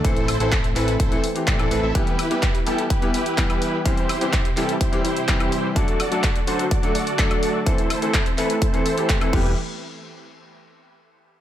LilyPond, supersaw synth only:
\new Staff \with { instrumentName = "Supersaw synth" } { \time 4/4 \key a \dorian \tempo 4 = 126 <e' a' c''>8. <e' a' c''>8 r16 <e' a' b'>16 r16 <e' a' c''>8 r8 <e' a' d''>8 <e' a' b'>16 <e' a' e''>16 | <e' g' b'>8. <e' g' b'>8 r16 <e' g' a'>16 r16 <e' g' b'>8 <e' g' b'>8 r16 <e' g' b'>8 r16 | <e' g' c''>8. <e' g' c''>8 r16 <e' g' a'>16 r16 <e' g' c''>8 <e' g' c''>8 r16 <e' g' c''>8 r16 | <fis' a' d''>8. <fis' a' d''>8 r16 <fis' a' c''>16 r16 <fis' a' d''>8 <fis' a' d''>8 r16 <fis' a' d''>8 r16 |
<e' a' c''>8. <e' a' c''>8 r16 <e' a' b'>16 r16 <e' a' c''>8 <e' a' c''>8 r16 <e' a' c''>16 <e' g' b'>8 | r1 | }